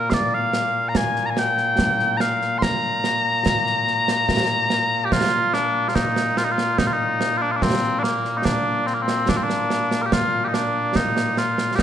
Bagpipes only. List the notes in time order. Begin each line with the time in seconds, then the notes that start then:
Already playing: A#2 A#3
0.10 D5 F5
0.34 F5
0.89 A#5
0.97 G#5
1.26 A#5
1.30 G#5
1.39 G5
2.17 F5 A#5
2.58 C6
2.63 A#5
5.05 G4
5.12 F4
5.54 D4
5.88 F4
5.95 D#4
6.38 F4
6.44 D#4
6.52 F4
6.78 D#4
6.87 F4
6.93 D#4
7.37 F4
7.42 D4
7.52 F4
7.56 D4
7.63 C4
7.99 D4
8.03 A#3
8.38 D#4
8.45 D4
8.87 C4
8.94 A#3
9.02 C4
9.29 D4
9.37 C4
9.43 D4
10.02 A#4
10.06 G4
10.13 F4
10.44 D#4 G4
10.54 D4
10.96 D#4
11.38 F4
11.75 G4
11.79 D#4